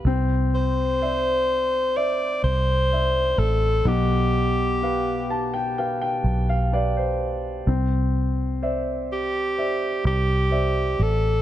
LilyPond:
<<
  \new Staff \with { instrumentName = "Grand piano" } { \time 4/4 \key c \major \tempo 4 = 63 << { r1 | r4. a''16 g''16 g''16 g''8 f''16 d''16 c''8. | r1 | } \\ { c'4 <c'' d'' e''>4 <c'' d'' e''>4 <c'' d'' e''>4 | b,4 <g' b' f''>4 <g' b' f''>4 <g' b' f''>4 | c'4 <c'' d'' e''>4 <c'' d'' e''>4 <c'' d'' e''>4 | } >> }
  \new Staff \with { instrumentName = "Alto saxophone" } { \time 4/4 \key c \major r8 c''4. d''8 c''4 a'8 | g'2 r2 | r4. g'4 g'4 a'8 | }
  \new Staff \with { instrumentName = "Fingered electric bass" } { \clef bass \time 4/4 \key c \major c,2~ c,8 c,4 a,,8 | b,,2~ b,,8 b,,4. | c,2~ c,8 c,4 a,,8 | }
>>